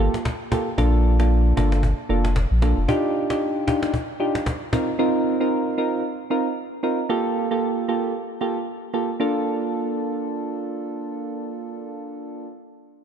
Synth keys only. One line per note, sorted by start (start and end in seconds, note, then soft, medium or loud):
0.00 0.16 A#3 medium
0.00 0.16 F4 medium
0.00 0.16 G4 medium
0.00 0.16 A4 medium
0.51 0.68 A#3 medium
0.51 0.68 F4 medium
0.51 0.68 G4 medium
0.51 0.69 A4 medium
0.78 1.16 A#3 medium
0.78 1.16 D4 medium
0.78 1.16 F4 medium
0.78 1.16 A4 loud
1.19 1.54 A#3 medium
1.19 1.54 D4 medium
1.19 1.54 F4 medium
1.19 1.55 A4 medium
1.57 1.81 A#3 medium
1.57 1.82 D4 medium
1.57 1.82 F4 medium
1.57 1.82 A4 medium
2.09 2.26 A#3 medium
2.09 2.26 D4 medium
2.09 2.26 F4 medium
2.09 2.26 A4 medium
2.62 2.79 A#3 medium
2.62 2.79 D4 medium
2.62 2.79 F4 medium
2.62 2.79 A4 medium
2.88 3.26 D4 medium
2.88 3.26 D#4 medium
2.88 3.27 F4 medium
2.88 3.27 G4 loud
3.30 3.65 D4 medium
3.30 3.65 D#4 medium
3.30 3.65 F4 medium
3.30 3.65 G4 medium
3.67 3.92 D4 medium
3.67 3.92 D#4 medium
3.67 3.92 F4 medium
3.67 3.92 G4 medium
4.20 4.37 D4 medium
4.20 4.37 D#4 medium
4.20 4.37 F4 medium
4.20 4.37 G4 medium
4.72 4.89 C4 medium
4.72 4.89 D#4 medium
4.72 4.89 F4 medium
4.72 4.90 A#4 medium
4.99 5.37 C4 loud
4.99 5.37 D#4 medium
4.99 5.37 F4 medium
4.99 5.37 A#4 loud
5.40 5.75 C4 medium
5.40 5.75 D#4 medium
5.40 5.75 F4 medium
5.40 5.76 A#4 medium
5.78 6.02 C4 medium
5.78 6.03 D#4 medium
5.78 6.03 F4 medium
5.78 6.03 A#4 medium
6.30 6.47 C4 medium
6.30 6.47 D#4 medium
6.30 6.47 F4 medium
6.30 6.47 A#4 medium
6.83 7.00 C4 medium
6.83 7.00 D#4 medium
6.83 7.00 F4 medium
6.83 7.00 A#4 medium
7.09 7.47 A#3 medium
7.09 7.48 F4 medium
7.09 7.48 G4 medium
7.09 7.48 A4 loud
7.51 7.86 A#3 medium
7.51 7.86 F4 medium
7.51 7.86 G4 medium
7.51 7.86 A4 medium
7.88 8.13 A#3 medium
7.88 8.13 F4 medium
7.88 8.13 G4 medium
7.88 8.13 A4 medium
8.41 8.58 A#3 medium
8.41 8.58 F4 medium
8.41 8.58 G4 medium
8.41 8.58 A4 medium
8.94 9.10 A#3 medium
8.94 9.10 F4 medium
8.94 9.10 G4 medium
8.94 9.11 A4 medium
9.20 12.46 A#3 medium
9.20 12.47 D4 medium
9.20 12.47 F4 medium
9.20 12.47 A4 loud